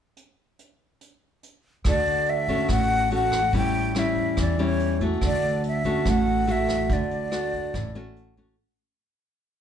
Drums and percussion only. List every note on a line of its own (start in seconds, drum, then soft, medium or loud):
0.17 closed hi-hat soft
0.59 closed hi-hat soft
1.01 closed hi-hat soft
1.43 closed hi-hat soft
1.85 kick medium
1.85 cross-stick medium
1.85 closed hi-hat soft
2.06 closed hi-hat soft
2.26 closed hi-hat soft
2.47 kick soft
2.47 closed hi-hat soft
2.68 kick medium
2.68 cross-stick medium
2.68 closed hi-hat soft
2.90 closed hi-hat soft
3.10 closed hi-hat soft
3.32 kick soft
3.32 cross-stick medium
3.32 closed hi-hat soft
3.53 kick medium
3.53 closed hi-hat soft
3.74 closed hi-hat soft
3.95 cross-stick medium
3.95 closed hi-hat soft
4.16 kick soft
4.16 closed hi-hat soft
4.37 kick medium
4.37 cross-stick medium
4.37 closed hi-hat soft
4.58 closed hi-hat soft
4.79 closed hi-hat soft
5.00 kick soft
5.00 closed hi-hat soft
5.21 kick medium
5.21 cross-stick medium
5.21 closed hi-hat soft
5.43 closed hi-hat soft
5.64 closed hi-hat soft
5.84 kick soft
5.84 closed hi-hat soft
6.05 kick medium
6.05 cross-stick medium
6.05 closed hi-hat soft
6.27 closed hi-hat soft
6.48 closed hi-hat soft
6.68 kick soft
6.68 cross-stick medium
6.68 closed hi-hat soft
6.90 kick medium
6.90 closed hi-hat soft
7.11 closed hi-hat soft
7.32 cross-stick medium
7.32 closed hi-hat soft
7.53 kick soft
7.53 closed hi-hat soft
7.74 kick medium
7.74 cross-stick medium
7.74 closed hi-hat soft
7.95 closed hi-hat soft
8.16 closed hi-hat soft
8.37 kick soft
8.37 closed hi-hat soft